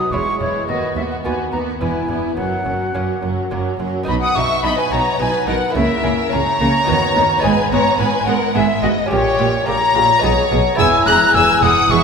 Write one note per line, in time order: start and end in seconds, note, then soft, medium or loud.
0.00 0.11 F#3 soft
0.00 0.11 D#4 soft
0.00 0.12 B4 soft
0.00 0.13 D#6 medium
0.12 0.20 E1 medium
0.12 0.20 E2 medium
0.12 0.38 E2 soft
0.12 0.38 G#3 soft
0.12 0.64 G#3 soft
0.12 0.39 E4 soft
0.12 0.64 E4 soft
0.12 0.38 C#5 soft
0.12 0.65 C#5 soft
0.12 0.40 C#6 medium
0.40 0.48 E1 soft
0.40 0.48 E2 soft
0.40 0.65 E2 soft
0.40 0.67 G#3 soft
0.40 0.68 E4 soft
0.40 0.67 C#5 soft
0.40 0.67 C#5 medium
0.68 0.76 D#2 medium
0.68 0.93 D#2 soft
0.68 0.95 B3 medium
0.68 0.95 F#4 soft
0.68 0.95 B4 soft
0.68 0.95 D#5 medium
0.96 1.04 D#2 soft
0.96 1.21 D#2 soft
0.96 1.23 B3 soft
0.96 1.23 F#4 soft
0.96 1.23 B4 soft
0.96 1.02 E5 medium
1.11 1.17 F#5 medium
1.24 1.32 D#2 soft
1.24 1.50 D#2 soft
1.24 1.51 B3 soft
1.24 1.77 B3 soft
1.24 1.52 F#4 soft
1.24 1.77 F#4 soft
1.24 1.50 B4 soft
1.24 1.77 B4 soft
1.24 1.51 G#5 medium
1.52 1.77 D#2 soft
1.52 1.60 D#2 medium
1.52 1.61 D#2 soft
1.52 1.79 B3 soft
1.52 1.80 F#4 soft
1.52 1.79 B4 soft
1.52 1.58 A#5 medium
1.80 1.89 E1 soft
1.80 1.89 E2 soft
1.80 2.06 E2 soft
1.80 2.08 B3 soft
1.80 2.33 B3 soft
1.80 2.08 E4 soft
1.80 2.34 E4 soft
1.80 2.08 B4 soft
1.80 2.34 B4 soft
1.80 2.36 G#5 medium
2.09 2.17 E1 soft
2.09 2.34 E2 soft
2.09 2.17 E2 soft
2.09 2.37 B3 soft
2.09 2.37 E4 soft
2.09 2.37 B4 soft
2.37 2.45 F#1 soft
2.37 2.62 F#2 soft
2.37 2.46 F#2 medium
2.37 2.65 F#3 soft
2.37 2.65 C#4 soft
2.37 2.65 A#4 soft
2.37 3.48 F#5 medium
2.66 2.74 F#1 soft
2.66 2.91 F#2 soft
2.66 2.74 F#2 soft
2.66 2.93 F#3 soft
2.66 2.93 C#4 soft
2.66 2.93 A#4 soft
2.94 3.03 F#1 soft
2.94 3.02 F#2 soft
2.94 3.20 F#2 soft
2.94 3.22 F#3 soft
2.94 3.47 A#3 soft
2.94 3.21 C#4 soft
2.94 3.47 C#4 soft
2.94 3.48 F#4 soft
2.94 3.21 A#4 soft
3.22 3.31 F#1 soft
3.22 3.30 F#2 soft
3.22 3.48 F#2 soft
3.22 3.50 F#3 soft
3.22 3.50 C#4 soft
3.22 3.50 A#4 soft
3.51 3.60 F#1 soft
3.51 3.59 F#2 soft
3.51 3.77 F#2 soft
3.51 3.79 F#3 soft
3.51 4.03 A#3 soft
3.51 3.78 C#4 soft
3.51 4.04 C#4 soft
3.51 4.04 F#4 soft
3.51 3.78 A#4 soft
3.79 3.87 F#1 soft
3.79 3.87 F#2 soft
3.79 4.05 F#2 soft
3.79 4.07 F#3 soft
3.79 4.07 C#4 soft
3.79 4.07 A#4 soft
4.03 5.69 B3 medium
4.03 5.70 D#4 medium
4.03 5.71 F#4 medium
4.07 4.16 B1 medium
4.07 4.15 B2 medium
4.07 4.33 B2 medium
4.07 4.16 D#4 medium
4.07 4.13 D#5 medium
4.07 4.13 B5 medium
4.07 4.21 B5 medium
4.21 4.36 F#5 medium
4.21 4.37 D#6 medium
4.21 4.36 D#6 medium
4.35 4.43 B1 medium
4.35 4.43 B2 medium
4.35 4.61 B2 medium
4.35 4.44 D#4 medium
4.35 4.64 E5 medium
4.35 4.62 C#6 medium
4.35 4.64 C#6 loud
4.63 4.72 B1 medium
4.63 4.72 B2 medium
4.63 4.89 B2 medium
4.63 4.71 D#4 medium
4.63 4.78 D#5 medium
4.63 4.69 B5 medium
4.63 4.78 B5 loud
4.78 4.92 B4 medium
4.78 4.84 G#5 medium
4.78 4.92 G#5 medium
4.92 5.00 B1 medium
4.92 5.17 B2 medium
4.92 5.00 B2 medium
4.92 5.00 D#4 medium
4.92 5.20 C#5 medium
4.92 5.20 A#5 medium
4.92 5.19 A#5 medium
5.19 5.27 B1 medium
5.19 5.27 B2 medium
5.19 5.45 B2 medium
5.19 5.28 D#4 medium
5.19 5.47 B4 medium
5.19 5.48 G#5 medium
5.47 5.55 B1 medium
5.47 5.72 B2 medium
5.47 5.55 B2 medium
5.47 5.56 D#4 medium
5.47 5.56 A#4 medium
5.47 5.74 F#5 medium
5.47 5.75 F#5 medium
5.70 6.82 A#3 medium
5.70 6.83 E4 medium
5.75 5.83 C#2 medium
5.75 6.01 C#3 medium
5.75 5.83 C#3 medium
5.75 5.84 A#3 medium
5.75 6.31 A#4 medium
5.75 6.31 E5 medium
6.03 6.12 C#2 medium
6.03 6.29 C#3 medium
6.03 6.12 C#3 medium
6.03 6.12 A#3 medium
6.31 6.40 C#2 medium
6.31 6.57 C#3 medium
6.31 6.40 C#3 medium
6.31 6.40 A#3 medium
6.31 7.43 C#5 medium
6.31 7.41 A#5 loud
6.31 7.44 A#5 loud
6.60 6.68 C#2 medium
6.60 6.68 C#3 medium
6.60 6.85 C#3 medium
6.60 6.68 A#3 medium
6.84 7.38 B3 medium
6.84 7.39 D#4 medium
6.84 7.40 F#4 medium
6.88 6.96 D#2 medium
6.88 7.13 D#3 medium
6.88 6.96 D#3 medium
6.88 6.96 B3 medium
7.15 7.24 D#2 medium
7.15 7.41 D#3 medium
7.15 7.24 D#3 medium
7.15 7.23 B3 medium
7.39 9.05 B3 medium
7.39 7.51 B3 medium
7.39 9.05 D#4 medium
7.39 9.06 G#4 medium
7.39 7.71 G#5 loud
7.39 7.71 G#5 medium
7.43 7.52 G#1 medium
7.43 7.69 G#2 medium
7.43 7.52 G#2 medium
7.43 7.72 B4 medium
7.71 7.79 G#1 medium
7.71 7.80 G#2 medium
7.71 7.97 G#2 medium
7.71 7.79 B3 medium
7.71 7.99 C#5 medium
7.71 7.99 A#5 medium
7.71 8.00 A#5 medium
7.98 8.08 G#1 medium
7.98 8.25 G#2 medium
7.98 8.08 G#2 medium
7.98 8.07 B3 medium
7.98 8.27 B4 medium
7.98 8.26 G#5 medium
7.98 8.27 G#5 medium
8.26 8.36 G#1 medium
8.26 8.36 G#2 medium
8.26 8.53 G#2 medium
8.26 8.35 B3 medium
8.26 8.55 A#4 medium
8.26 8.55 F#5 medium
8.26 8.33 F#5 medium
8.54 8.64 G#1 medium
8.54 8.80 G#2 medium
8.54 8.64 G#2 medium
8.54 8.63 B3 medium
8.54 8.63 G#4 medium
8.54 8.82 E5 medium
8.54 8.83 E5 medium
8.82 8.91 G#1 medium
8.82 9.08 G#2 medium
8.82 8.92 G#2 medium
8.82 8.91 B3 medium
8.82 8.91 F#4 medium
8.82 8.89 D#5 medium
8.82 9.11 D#5 medium
9.06 10.17 C#4 medium
9.06 10.18 G4 medium
9.06 9.68 C#5 medium
9.11 9.19 A#1 medium
9.11 9.36 A#2 medium
9.11 9.19 A#2 medium
9.11 9.19 G4 medium
9.11 9.67 G4 medium
9.11 9.66 C#5 loud
9.39 9.48 A#1 medium
9.39 9.64 A#2 medium
9.39 9.47 A#2 medium
9.39 9.47 G4 medium
9.66 9.76 A#1 medium
9.66 9.92 A#2 medium
9.66 9.76 A#2 medium
9.66 9.75 G4 medium
9.66 10.77 C#5 loud
9.66 10.76 A#5 loud
9.66 10.51 A#5 loud
9.95 10.04 A#1 medium
9.95 10.20 A#2 medium
9.95 10.04 A#2 medium
9.95 10.03 G4 medium
10.19 10.74 B3 medium
10.19 10.76 D#4 medium
10.19 10.76 G#4 medium
10.23 10.32 B1 medium
10.23 10.32 B2 medium
10.23 10.49 B2 medium
10.23 10.31 G#4 medium
10.51 10.60 B1 medium
10.51 10.76 B2 medium
10.51 10.59 B2 medium
10.51 10.59 G#4 medium
10.75 12.04 B3 medium
10.75 12.04 E4 medium
10.75 12.04 G#4 medium
10.75 10.87 G#4 medium
10.75 11.08 E6 medium
10.79 10.87 E1 medium
10.79 11.04 E2 medium
10.79 10.87 E2 medium
10.79 11.06 G#5 loud
10.79 10.87 E6 loud
11.06 11.15 E1 medium
11.06 11.32 E2 medium
11.06 11.16 E2 medium
11.06 11.15 G#4 medium
11.06 11.34 A#5 loud
11.06 11.36 F#6 loud
11.06 11.15 F#6 loud
11.34 11.43 E1 medium
11.34 11.60 E2 medium
11.34 11.44 E2 medium
11.34 11.43 G#4 medium
11.34 11.62 G#5 medium
11.34 11.64 E6 medium
11.34 11.62 E6 loud
11.62 11.70 E1 medium
11.62 11.87 E2 medium
11.62 11.71 E2 medium
11.62 11.70 G#4 medium
11.62 11.91 F#5 medium
11.62 11.90 D#6 loud
11.62 11.92 D#6 loud
11.90 11.99 E1 medium
11.90 12.04 E2 medium
11.90 11.99 E2 medium
11.90 11.98 G#4 medium
11.90 12.04 E5 loud
11.90 12.04 C#6 loud
11.90 12.04 C#6 medium